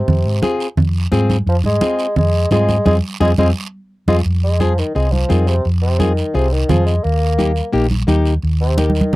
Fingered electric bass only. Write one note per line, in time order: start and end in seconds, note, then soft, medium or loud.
0.08 0.22 F2 medium
0.25 0.39 G#2 medium
0.77 1.05 F2 medium
1.12 1.40 G#2 medium
1.46 1.61 F2 medium
1.64 1.78 G#2 medium
2.17 2.45 F2 medium
2.51 2.79 G#2 medium
2.86 2.99 F2 medium
3.21 3.34 F2 medium
3.38 3.51 F2 medium
4.08 4.21 F2 medium
4.25 4.81 F2 medium
4.96 5.23 C2 medium
5.30 5.58 F2 medium
5.66 6.21 F2 medium
6.35 6.63 C2 medium
6.70 6.98 F2 loud
7.05 7.60 D#2 medium
7.74 8.02 A#1 medium
8.08 8.36 D#2 loud
8.43 8.99 D#2 medium